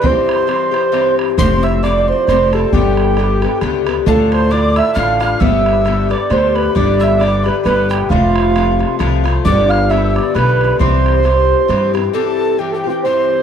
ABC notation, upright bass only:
X:1
M:3/4
L:1/8
Q:"Swing" 1/4=134
K:C
V:1 name="Upright bass" clef=bass
z6 | F,,,4 F,,,2 | G,,,4 _D,,2 | D,,4 A,,,2 |
G,,,4 D,,2 | G,,,4 G,,,2 | F,,,4 C,,2 | G,,,4 B,,,2 |
C,,4 G,,2 | z6 |]